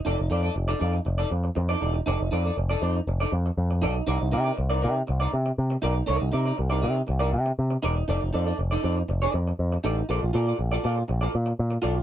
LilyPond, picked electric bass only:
\new Staff \with { instrumentName = "Picked electric bass" } { \clef bass \time 4/4 \key f \mixolydian \tempo 4 = 120 f,,16 f,,16 f,8 f,,8 f,8 f,,8 f,8 f,8 e,,8 | f,,16 f,,16 f,8 f,,8 f,8 f,,8 f,8 f,8 b,,8 | c,16 c,16 c8 c,8 c8 c,8 c8 c8 b,,8 | c,16 c,16 c8 c,8 c8 c,8 c8 c8 e,,8 |
f,,16 f,,16 f,8 f,,8 f,8 f,,8 f,8 f,8 a,,8 | bes,,16 bes,,16 bes,8 bes,,8 bes,8 bes,,8 bes,8 bes,8 b,,8 | }